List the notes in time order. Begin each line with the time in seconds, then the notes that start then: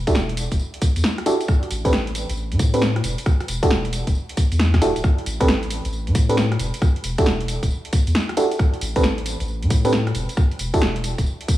0.07 D4 E4 F#4 G4 A4, kick, closed hi-hat, tambourine
0.15 E1, snare, tambourine
0.29 closed hi-hat
0.37 open hi-hat, tambourine
0.52 E1, kick, closed hi-hat, tambourine
0.59 tambourine
0.74 closed hi-hat
0.82 kick, open hi-hat, tambourine
0.96 E2, closed hi-hat, tambourine
1.04 snare, tambourine
1.18 cross-stick, closed hi-hat
1.26 D4 E4 F#4 G4 A4, open hi-hat, tambourine
1.41 closed hi-hat, tambourine
1.48 kick, cross-stick, tambourine
1.63 closed hi-hat
1.71 A1, open hi-hat, tambourine
1.85 C4 D4 G4 A4 B4, kick, closed hi-hat, tambourine
1.93 A1, snare, tambourine
2.07 closed hi-hat
2.15 open hi-hat, tambourine
2.29 A1, closed hi-hat, tambourine
2.37 tambourine
2.52 A2, closed hi-hat
2.59 kick, open hi-hat, tambourine
2.74 C4 D4 G4 A4 B4, closed hi-hat, tambourine
2.82 snare, tambourine
2.96 cross-stick, closed hi-hat
3.04 E1, open hi-hat, tambourine
3.18 closed hi-hat, tambourine
3.26 kick, cross-stick, tambourine
3.40 cross-stick, closed hi-hat
3.48 E1, open hi-hat, tambourine
3.63 D4 E4 F#4 G4 A4, kick, closed hi-hat, tambourine
3.71 E1, snare, tambourine
3.85 closed hi-hat
3.93 open hi-hat, tambourine
4.07 E1, kick, closed hi-hat, tambourine
4.15 tambourine
4.29 closed hi-hat
4.37 kick, open hi-hat, tambourine
4.52 E2, closed hi-hat, tambourine
4.59 snare, tambourine
4.74 kick, cross-stick, snare, closed hi-hat
4.82 D1 D4 E4 F#4 G4 A4, open hi-hat, tambourine
4.96 D1, closed hi-hat, tambourine
5.04 kick, cross-stick, tambourine
5.18 closed hi-hat
5.26 A1, open hi-hat, tambourine
5.40 C4 D4 G4 A4 B4, kick, closed hi-hat, tambourine
5.48 A1, snare, tambourine
5.63 closed hi-hat
5.70 open hi-hat, tambourine
5.85 A1, closed hi-hat, tambourine
5.93 tambourine
6.07 A2, closed hi-hat
6.15 kick, open hi-hat, tambourine
6.29 C4 D4 G4 A4 B4, closed hi-hat, tambourine
6.37 snare, tambourine
6.52 cross-stick, closed hi-hat
6.59 E1, open hi-hat, tambourine
6.74 closed hi-hat, tambourine
6.82 kick, cross-stick, tambourine
6.96 closed hi-hat
7.04 E1, open hi-hat, tambourine
7.18 D4 E4 F#4 G4 A4, kick, closed hi-hat, tambourine
7.26 E1, snare, tambourine
7.40 closed hi-hat
7.48 open hi-hat, tambourine
7.63 E1, kick, closed hi-hat, tambourine
7.71 tambourine
7.85 closed hi-hat
7.93 kick, open hi-hat, tambourine
8.07 E2, closed hi-hat, tambourine
8.15 snare, tambourine
8.29 cross-stick, closed hi-hat
8.37 D4 E4 F#4 G4 A4, open hi-hat, tambourine
8.51 closed hi-hat, tambourine
8.59 kick, cross-stick, tambourine
8.74 closed hi-hat
8.81 A1, open hi-hat, tambourine
8.96 C4 D4 G4 A4 B4, kick, closed hi-hat, tambourine
9.04 A1, snare, tambourine
9.18 closed hi-hat
9.26 open hi-hat, tambourine
9.40 A1, closed hi-hat, tambourine
9.48 tambourine
9.62 A2, closed hi-hat
9.70 kick, open hi-hat, tambourine
9.85 C4 D4 G4 A4 B4, closed hi-hat, tambourine
9.93 snare
10.07 cross-stick, closed hi-hat
10.15 E1, open hi-hat, tambourine
10.29 closed hi-hat, tambourine
10.37 kick, cross-stick, tambourine
10.51 closed hi-hat
10.59 E1, open hi-hat, tambourine
10.74 D4 E4 F#4 G4 A4, kick, closed hi-hat, tambourine
10.82 E1, snare, tambourine
10.96 closed hi-hat
11.04 open hi-hat, tambourine
11.18 E1, kick, closed hi-hat, tambourine
11.26 tambourine
11.41 closed hi-hat
11.48 kick, open hi-hat, tambourine